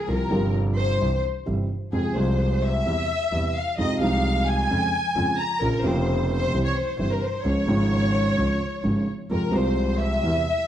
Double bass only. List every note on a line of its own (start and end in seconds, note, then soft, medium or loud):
0.08 0.27 C2 medium
0.31 0.97 G1 medium
1.01 1.20 C2 medium
1.48 1.67 G1 medium
1.93 2.13 F2 medium
2.16 2.82 C2 medium
2.86 3.06 E2 medium
3.32 3.52 E2 medium
3.78 3.98 F2 medium
4.01 4.67 C2 medium
4.70 4.89 F2 medium
5.16 5.35 F2 medium
5.62 5.81 A#1 medium
5.84 6.49 F1 medium
6.53 6.72 C2 medium
6.98 7.18 G1 medium
7.44 7.64 C#2 medium
7.67 8.34 G#1 medium
8.37 8.57 C#2 medium
8.84 9.04 G#1 medium
9.30 9.50 F2 medium
9.54 10.20 C2 medium
10.24 10.43 E2 medium